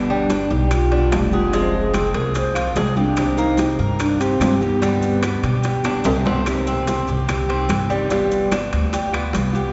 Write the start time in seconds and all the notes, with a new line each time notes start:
Already playing: G1 B2 D3 G3 B3 G4
0.10 G3 D4, high conga
0.29 D3 G3 B3 D4 G4, high bongo, high conga, high timbale, maracas
0.50 B1 D#4 G4, high conga, maracas
0.70 F4, muted nylon-string guitar stroke, high bongo, high conga, high timbale, claves, maracas
0.91 D3 G3 B3 D4 G4, high conga, high timbale
1.11 F1 D3 G3 B3 G4, high bongo, low bongo, high conga, high timbale, low timbale, claves, maracas
1.31 D3 G3 B3 F4 G4 G#4, high conga, maracas
1.53 C3 F3 G#3 C4 F4, high bongo, high timbale, maracas
1.73 G#4, high bongo, high conga
1.94 F3 G#3 C4 F4, high bongo, high conga, high timbale, claves, maracas
2.14 C2 G#4 A#4, high conga, high timbale, maracas
2.34 C5, muted nylon-string guitar stroke, high bongo, high conga, high timbale, maracas
2.54 F3 G#3 C4 F4, high bongo, high conga, high timbale, claves, maracas
2.75 C2 F3 G#3 C4 F4 G#4, high bongo, low bongo, high conga, high timbale, low timbale, maracas
2.96 F3 G#3 C4 D4 F4 G4, high bongo, high conga, maracas
3.16 C3 D#3 A#3 C4 G4, high bongo, high conga, high timbale, claves, maracas
3.37 A#3 D#4, high conga, maracas
3.57 D#3 A#3 C4 G4, high bongo, high conga, high timbale, maracas
3.78 G2 A#4, high conga, maracas
3.99 D4, muted nylon-string guitar stroke, high bongo, high conga, high timbale, claves, maracas
4.20 D#3 A#3 C4 G4, high conga, high timbale, maracas
4.40 G2 D#3 A#3 C4 G4, high bongo, low bongo, high conga, high timbale, low timbale, claves, maracas
4.61 D#3 A#3 B3 C4 G4, high conga, maracas
4.82 B2 D3 G3 B3 G4, high bongo, high conga, high timbale, maracas
5.02 high bongo, high conga, maracas
5.23 D3 G3 B3 G4, high bongo, high conga, high timbale, claves, maracas
5.43 B2 G4, high conga, high timbale, maracas
5.63 muted nylon-string guitar stroke, high bongo, high conga, high timbale, maracas
5.84 D3 G3 B3 D4 G4, high bongo, high conga, high timbale, claves, maracas
6.04 C2 D3 G3 B3 G4, high bongo, high conga, high timbale, maracas
6.25 D3 G3 B3 C4 G4, low bongo, high conga, low timbale, maracas
6.45 C3 D#3 A#3 C4 G4, high bongo, high timbale, claves, maracas
6.67 C4, high conga, maracas
6.87 D#3 A#3 C4 G4, high bongo, high conga, high timbale, maracas
7.07 C2 G4, high conga, maracas
7.28 muted nylon-string guitar stroke, high bongo, high conga, low conga, high timbale, claves, maracas
7.49 D#3 A#3 C4 G4, high conga, high timbale
7.68 G1 D#3 A#3 C4 G4, high bongo, low bongo, high conga, high timbale, claves, maracas
7.88 D#3 G3 A#3 C4 G4, high conga, maracas
8.09 G3 B3 F4, high bongo, high conga, high timbale, maracas
8.31 high bongo, high conga, maracas
8.51 G3 B3 D4 F4, high bongo, high conga, high timbale, claves, maracas
8.72 D2, high conga, high timbale, maracas
8.92 G4, muted nylon-string guitar stroke, high bongo, high conga, high timbale, maracas
9.12 B3 F4, high bongo, high conga, high timbale, claves
9.33 C2 G3 B3 F4, high bongo, low bongo, high conga, high timbale, maracas
9.53 B3 F4 G4, high bongo, high conga, maracas